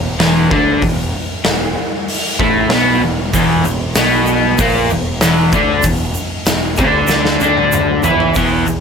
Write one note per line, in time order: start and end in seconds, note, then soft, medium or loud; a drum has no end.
0.00 0.16 E1 medium
0.00 0.13 E2 medium
0.18 0.48 E1 loud
0.18 0.50 E2 medium
0.18 0.50 E3 loud
0.18 snare loud
0.18 open hi-hat medium
0.50 0.80 D2 loud
0.50 0.81 D3 medium
0.50 0.81 D4 loud
0.50 kick loud
0.82 1.12 E1 medium
0.82 1.07 E2 medium
0.82 kick loud
0.82 open hi-hat medium
1.44 1.74 E1 medium
1.44 1.70 E2 medium
1.44 snare loud
1.44 open hi-hat medium
2.08 open hi-hat medium
2.39 2.68 A1 loud
2.39 2.70 A2 medium
2.39 2.70 A3 medium
2.39 kick loud
2.69 2.99 B1 loud
2.69 3.01 B2 medium
2.69 3.02 B3 loud
2.69 snare loud
2.69 open hi-hat medium
3.02 3.31 E1 medium
3.02 3.27 E2 medium
3.32 3.62 E1 loud
3.32 3.64 E2 medium
3.32 3.65 E3 loud
3.32 kick loud
3.32 open hi-hat medium
3.32 shaker loud
3.64 3.94 E1 medium
3.64 3.90 E2 medium
3.64 shaker medium
3.95 4.55 B1 loud
3.95 4.58 B2 loud
3.95 4.58 B3 loud
3.95 snare loud
3.95 open hi-hat medium
3.95 shaker loud
4.26 shaker medium
4.58 4.88 A#1 loud
4.58 4.89 A#2 loud
4.58 4.90 A#3 loud
4.58 kick loud
4.58 open hi-hat medium
4.58 shaker loud
4.90 5.19 E1 medium
4.90 5.15 E2 medium
4.90 shaker medium
5.21 5.51 E1 loud
5.21 5.52 E2 medium
5.21 5.52 E3 loud
5.21 snare loud
5.21 open hi-hat medium
5.21 shaker loud
5.52 5.82 D2 medium
5.52 5.83 D3 loud
5.52 5.84 D4 loud
5.52 kick loud
5.52 shaker medium
5.82 6.13 E1 medium
5.82 6.09 E2 medium
5.82 kick medium
5.82 open hi-hat medium
5.82 shaker medium
6.14 shaker medium
6.46 6.76 E1 medium
6.46 6.72 E2 medium
6.46 snare loud
6.46 open hi-hat medium
6.46 shaker loud
6.76 7.38 D2 medium
6.76 7.40 D3 loud
6.76 7.41 D4 loud
6.76 kick loud
6.76 shaker medium
7.07 snare medium
7.07 shaker loud
7.25 snare medium
7.40 8.00 D2 loud
7.40 8.03 D3 medium
7.40 8.04 D4 loud
7.40 shaker medium
7.57 high tom medium
7.72 mid tom medium
7.72 shaker loud
8.03 8.33 E2 medium
8.03 8.34 E3 loud
8.03 8.35 E4 loud
8.03 floor tom loud
8.03 shaker medium
8.20 floor tom loud
8.34 8.65 E1 loud
8.34 8.66 E2 medium
8.34 8.67 E3 loud
8.34 kick loud
8.34 open hi-hat medium
8.34 shaker medium
8.67 8.80 E1 medium
8.67 8.80 E2 medium
8.67 shaker medium